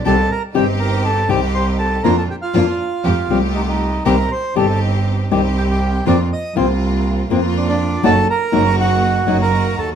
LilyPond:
<<
  \new Staff \with { instrumentName = "Bandoneon" } { \time 4/4 \key c \dorian \tempo 4 = 120 <a' a''>8 <bes' bes''>8 <g' g''>8 <bes' bes''>8 <a' a''>8 <g' g''>8 <c'' c'''>8 <a' a''>8 | <bes' bes''>16 <a' a''>16 <g' g''>16 <f' f''>2 r16 <ees' ees''>16 <ees' ees''>8. | <bes' bes''>8 <c'' c'''>8 <a' a''>8 r4. <g' g''>16 <g' g''>8. | <d'' d'''>8 <ees'' ees'''>8 <c'' c'''>8 r4. <d' d''>16 <d' d''>8. |
<a' a''>8 <bes' bes''>4 <ges' ges''>4~ <ges' ges''>16 <bes' bes''>8. <a' a''>8 | }
  \new Staff \with { instrumentName = "String section" } { \time 4/4 \key c \dorian <c' ees' g'>8 r8 <c' ees' g'>4. <c' ees' g'>4. | <bes d' f'>8 r8 <bes d' f'>8 r8 <a f' g'>8 <a f' g'>4. | <c' ees' g'>8 r8 <c' ees' g'>4. <c' ees' g'>4. | <bes c' f'>8 r8 <bes c' f'>4. <bes c' f'>4. |
<bes ees' ges'>8 r8 <bes ees' ges'>4. <bes ees' ges'>4. | }
  \new Staff \with { instrumentName = "Nylon-string guitar" } { \time 4/4 \key c \dorian <c ees g c' g'>8 r8 <c ees g c' g'>8 r4 <c ees g c' g'>8 r4 | <f bes d' f'>8 r8 <f bes d' f'>8 r4 <f g c' g'>8 r4 | <c ees g c' g'>8 r8 <c ees g c' g'>8 r4 <c ees g c' g'>8 r4 | <f bes c' f'>8 r8 <f bes c' f'>8 r4 <f bes c' f'>8 r4 |
<ges bes ees' ges'>8 r8 <ges bes ees' ges'>8 r4 <ges bes ees' ges'>8 r4 | }
  \new Staff \with { instrumentName = "Double bass" } { \clef bass \time 4/4 \key c \dorian c,8 r8 g,,4. c,4. | f,8 r8 f,8 r8 f,8 c,4. | c,8 r8 g,,4. c,4. | f,8 r8 c,4. f,4. |
ges,,8 r8 ges,,4. ges,,4 ees,8 | }
>>